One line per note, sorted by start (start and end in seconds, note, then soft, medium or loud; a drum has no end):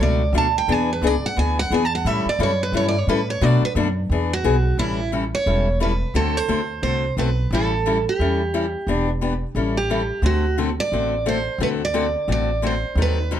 0.00 0.32 C#2 medium
0.00 0.21 B2 medium
0.00 0.21 F#3 medium
0.00 0.21 A3 medium
0.00 0.21 D4 medium
0.00 0.21 F#4 medium
0.00 0.33 D5 medium
0.33 0.66 D2 medium
0.33 0.45 B2 medium
0.33 0.45 F#3 medium
0.33 0.45 A3 medium
0.33 0.46 D4 medium
0.33 0.46 F#4 medium
0.38 0.56 A5 medium
0.58 0.72 G5 medium
0.68 1.01 E2 medium
0.68 0.89 E3 medium
0.68 0.89 B3 medium
0.68 0.89 D4 medium
0.68 0.89 G#4 medium
0.72 0.90 G#5 loud
0.93 1.07 B4 medium
1.02 1.21 C#2 medium
1.02 1.13 E3 medium
1.02 1.14 B3 medium
1.02 1.14 D4 medium
1.02 1.14 G#4 medium
1.07 1.25 D5 medium
1.23 1.38 F#5 medium
1.23 muted upright bass stroke soft
1.36 1.70 D2 medium
1.36 1.57 E3 medium
1.36 1.58 B3 medium
1.36 1.58 D4 medium
1.36 1.58 G#4 medium
1.36 1.58 G#5 loud
1.59 1.71 F#5 loud
1.71 2.04 E2 medium
1.71 1.82 E3 medium
1.71 1.82 B3 loud
1.71 1.83 D4 medium
1.71 1.83 G#4 medium
1.71 1.85 G#5 medium
1.85 1.95 A5 loud
1.95 2.07 F#5 medium
2.05 2.24 A2 medium
2.05 2.26 E3 medium
2.05 2.26 G3 medium
2.05 2.26 C#4 medium
2.05 2.27 E4 medium
2.05 2.27 A4 medium
2.05 2.26 E5 medium
2.26 2.40 D5 medium
2.26 muted upright bass stroke soft
2.39 2.71 F#2 medium
2.39 2.50 E3 medium
2.39 2.50 G3 medium
2.39 2.50 C#4 loud
2.39 2.51 E4 loud
2.39 2.51 A4 medium
2.43 2.61 C#5 medium
2.63 2.74 B4 loud
2.72 3.06 G2 medium
2.72 2.94 E3 medium
2.72 2.94 G3 medium
2.72 2.94 C#4 medium
2.72 2.95 E4 medium
2.72 2.95 A4 medium
2.77 2.86 C#5 medium
2.88 2.99 D5 medium
2.99 3.09 C#5 loud
3.07 3.40 A2 medium
3.07 3.19 E3 medium
3.07 3.19 G3 medium
3.07 3.19 C#4 medium
3.07 3.19 E4 medium
3.07 3.19 A4 loud
3.07 3.29 B4 medium
3.30 3.43 C#5 medium
3.41 3.62 B2 medium
3.41 3.61 B2 loud
3.41 3.62 F#3 medium
3.41 3.62 A3 medium
3.41 3.63 D4 medium
3.41 3.63 F#4 medium
3.41 3.62 D5 loud
3.62 3.72 B4 loud
3.62 muted upright bass stroke soft
3.75 4.08 F#2 medium
3.75 3.87 B2 medium
3.75 3.87 F#3 medium
3.75 3.87 A3 medium
3.75 3.87 D4 loud
3.75 3.87 F#4 loud
4.10 4.43 E2 medium
4.10 4.31 E3 medium
4.10 4.31 B3 medium
4.10 4.31 D4 medium
4.10 4.32 G#4 medium
4.33 4.76 F#4 loud
4.44 4.77 B1 loud
4.44 4.55 E3 medium
4.44 4.55 B3 medium
4.44 4.55 D4 medium
4.44 4.55 G#4 loud
4.77 5.32 A1 medium
4.77 4.99 E3 medium
4.77 4.99 G3 medium
4.77 4.99 C#4 medium
4.77 4.99 E4 medium
4.77 5.10 E4 loud
4.77 4.99 A4 medium
5.12 5.23 E3 medium
5.12 5.23 G3 medium
5.12 5.23 C#4 medium
5.12 5.23 E4 medium
5.12 5.24 A4 medium
5.35 5.78 C#5 loud
5.46 6.01 E1 medium
5.46 5.67 E3 medium
5.46 5.67 G3 medium
5.46 5.67 C#4 medium
5.46 5.67 E4 medium
5.46 5.67 A4 medium
5.80 5.91 E3 medium
5.80 5.91 G3 medium
5.80 5.91 C#4 medium
5.80 5.92 E4 medium
5.80 5.92 A4 medium
5.80 6.13 B4 medium
6.14 6.41 D2 medium
6.14 6.35 D3 medium
6.14 6.35 A3 medium
6.14 6.36 C4 medium
6.14 6.35 F#4 medium
6.14 6.36 A4 medium
6.14 6.37 A4 loud
6.37 6.82 C5 loud
6.48 6.77 D2 medium
6.48 6.59 D3 medium
6.48 6.60 A3 medium
6.48 6.60 C4 medium
6.48 6.60 F#4 medium
6.48 6.60 A4 loud
6.82 7.12 C2 medium
6.82 7.04 D3 medium
6.82 7.04 A3 medium
6.82 7.04 C4 medium
6.82 7.04 F#4 medium
6.82 7.04 A4 medium
6.82 7.15 C5 medium
7.17 7.46 B1 medium
7.17 7.28 D3 medium
7.17 7.28 A3 medium
7.17 7.28 C4 medium
7.17 7.29 F#4 medium
7.17 7.28 A4 medium
7.17 7.53 B4 medium
7.51 8.05 A1 medium
7.51 7.72 E3 medium
7.51 7.73 G3 medium
7.51 7.73 C#4 medium
7.51 7.73 E4 medium
7.51 7.73 A4 medium
7.51 8.04 A4 loud
7.86 7.96 E3 medium
7.86 7.97 G3 medium
7.86 7.97 C#4 medium
7.86 7.97 E4 medium
7.86 7.97 A4 medium
8.09 9.06 G4 medium
8.19 8.74 E2 medium
8.19 8.40 E3 medium
8.19 8.41 G3 medium
8.19 8.41 C#4 medium
8.19 8.41 E4 medium
8.19 8.41 A4 medium
8.54 8.64 E3 medium
8.54 8.65 G3 medium
8.54 8.65 C#4 medium
8.54 8.65 E4 medium
8.54 8.65 A4 medium
8.87 9.42 E1 medium
8.87 9.08 E3 medium
8.87 9.09 B3 medium
8.87 9.09 D4 medium
8.87 9.09 G4 medium
9.21 9.32 E3 medium
9.21 9.33 B3 medium
9.21 9.33 D4 medium
9.21 9.33 G4 medium
9.55 10.10 A1 medium
9.55 9.76 E3 medium
9.55 9.76 G3 medium
9.55 9.77 C#4 medium
9.55 9.77 E4 medium
9.55 9.77 A4 medium
9.77 10.21 G4 loud
9.90 10.01 E3 medium
9.90 10.01 G3 medium
9.90 10.01 C#4 medium
9.90 10.01 E4 medium
9.90 10.01 A4 medium
10.22 10.77 D2 medium
10.22 10.44 D3 medium
10.22 10.44 A3 medium
10.22 10.44 C4 medium
10.22 10.44 F#4 medium
10.22 10.57 F#4 medium
10.22 10.45 A4 medium
10.58 10.69 D3 medium
10.58 10.69 A3 medium
10.58 10.69 C4 medium
10.58 10.69 F#4 medium
10.58 10.69 A4 medium
10.80 11.28 D5 loud
10.92 11.46 A1 medium
10.92 11.13 D3 medium
10.92 11.13 A3 medium
10.92 11.13 C4 medium
10.92 11.13 F#4 medium
10.92 11.13 A4 medium
11.26 11.37 D3 medium
11.26 11.37 A3 medium
11.26 11.37 C4 medium
11.26 11.37 F#4 medium
11.26 11.37 A4 medium
11.26 11.62 C5 medium
11.58 12.14 D2 medium
11.58 11.81 D3 medium
11.58 11.81 A3 medium
11.58 11.81 C4 medium
11.58 11.81 F#4 medium
11.58 11.81 A4 medium
11.63 11.68 B4 loud
11.85 12.31 D5 loud
11.94 12.05 D3 medium
11.94 12.05 A3 medium
11.94 12.05 C4 medium
11.94 12.05 F#4 medium
11.94 12.06 A4 medium
12.28 12.83 A1 medium
12.28 12.49 D3 medium
12.28 12.49 A3 medium
12.28 12.49 C4 medium
12.28 12.49 F#4 medium
12.28 12.50 A4 medium
12.32 12.62 D5 medium
12.62 12.73 D3 medium
12.62 12.74 A3 medium
12.62 12.74 C4 medium
12.62 12.74 F#4 medium
12.62 12.74 A4 loud
12.67 13.00 C5 medium
12.95 13.40 D#2 medium
12.95 13.18 D#3 medium
12.95 13.18 F#3 medium
12.95 13.18 C4 medium
12.95 13.18 D#4 medium
12.95 13.18 A4 medium
13.02 13.40 B4 medium
13.31 13.40 D#3 medium
13.31 13.40 F#3 medium
13.31 13.40 C4 medium
13.31 13.40 D#4 medium
13.31 13.40 A4 medium